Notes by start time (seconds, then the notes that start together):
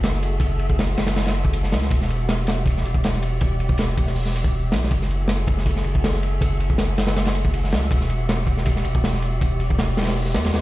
Already playing: F#1 F#4 G#4 A4 E5
0.03 snare, ride
0.14 snare
0.23 ride
0.40 F#1, kick, ride
0.59 ride
0.70 kick
0.79 snare, ride
0.97 F#1, snare, ride
1.07 snare, ride
1.16 snare, ride
1.25 snare, ride
1.35 ride
1.45 kick
1.53 ride
1.63 snare
1.72 C#2, snare, ride
1.82 snare
1.91 E1 G4 D5, kick, ride
2.01 snare
2.10 ride
2.29 snare, ride
2.47 snare, ride
2.66 kick, ride
2.77 snare
2.85 E1, ride
2.95 kick
3.04 snare, ride
3.14 snare
3.23 ride
3.41 E1, kick, ride
3.60 ride
3.69 kick
3.78 snare, ride
3.97 E1, kick, ride
4.07 snare
4.16 open hi-hat
4.26 snare
4.36 ride
4.44 kick
4.54 E1
4.72 B1, snare, ride
4.84 snare
4.91 F#1 F#4 G#4 A4 E5, kick, ride
5.02 snare
5.11 ride
5.28 snare, ride
5.47 kick, ride
5.58 snare
5.66 kick, ride
5.76 snare
5.84 F#1, ride
5.95 kick
6.04 snare, ride
6.14 snare
6.23 ride
6.41 F#1, kick, ride
6.60 ride
6.70 kick
6.78 snare, ride
6.98 F#1, snare, ride
7.07 snare, ride
7.16 snare, ride
7.25 snare, ride
7.35 ride
7.45 kick
7.54 ride
7.64 snare
7.72 C#2, snare, ride
7.82 snare
7.91 E1 G4 D5, kick, ride
8.01 snare
8.10 ride
8.29 snare, ride
8.47 kick, ride
8.57 snare
8.66 kick, ride
8.76 snare
8.84 E1, ride
8.95 kick
9.04 snare, ride
9.13 snare
9.22 ride
9.41 E1, kick, ride
9.60 ride
9.70 kick
9.79 snare, ride
9.97 E1, snare, ride
10.03 snare, ride
10.07 snare, ride
10.16 open hi-hat
10.25 snare
10.34 E2, snare, ride
10.45 snare, ride
10.54 snare, ride